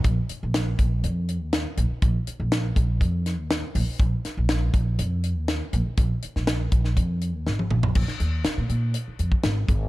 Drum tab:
CC |----------------|----------------|----------------|----------------|
HH |x-x-x-x-x-x-x-x-|x-x-x-x-x-x-x-o-|x-x-x-x-x-x-x-x-|x-x-x-x-x-x-----|
SD |----o-------o---|----o-----o-o---|--o-o-------o---|---oo--o----o---|
T1 |----------------|----------------|----------------|-------------o--|
T2 |----------------|----------------|----------------|--------------o-|
FT |----------------|----------------|----------------|---------------o|
BD |o-----o---------|o-----o-o-------|o-----o---------|o-----o-o-------|

CC |x---------------|
HH |--x-x-x-x-x-x-x-|
SD |-o--o-------o---|
T1 |----------------|
T2 |----------------|
FT |----------------|
BD |o----------o--o-|